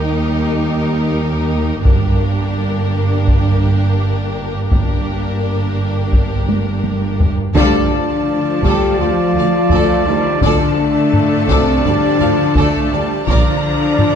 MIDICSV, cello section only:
0, 0, Header, 1, 2, 480
1, 0, Start_track
1, 0, Tempo, 714286
1, 1244, Time_signature, 4, 2, 24, 8
1, 9510, End_track
2, 0, Start_track
2, 0, Title_t, "Cello section"
2, 0, Program_c, 0, 48
2, 0, Note_on_c, 0, 39, 59
2, 1214, Note_off_c, 0, 39, 0
2, 1251, Note_on_c, 0, 43, 54
2, 3140, Note_off_c, 0, 43, 0
2, 3164, Note_on_c, 0, 43, 50
2, 4923, Note_off_c, 0, 43, 0
2, 5075, Note_on_c, 0, 50, 82
2, 5773, Note_off_c, 0, 50, 0
2, 5801, Note_on_c, 0, 55, 72
2, 6038, Note_off_c, 0, 55, 0
2, 6043, Note_on_c, 0, 53, 61
2, 6757, Note_on_c, 0, 51, 58
2, 6764, Note_off_c, 0, 53, 0
2, 6998, Note_on_c, 0, 50, 68
2, 7001, Note_off_c, 0, 51, 0
2, 7708, Note_off_c, 0, 50, 0
2, 7730, Note_on_c, 0, 48, 65
2, 7968, Note_off_c, 0, 48, 0
2, 7977, Note_on_c, 0, 50, 60
2, 8692, Note_off_c, 0, 50, 0
2, 8931, Note_on_c, 0, 50, 72
2, 9510, Note_off_c, 0, 50, 0
2, 9510, End_track
0, 0, End_of_file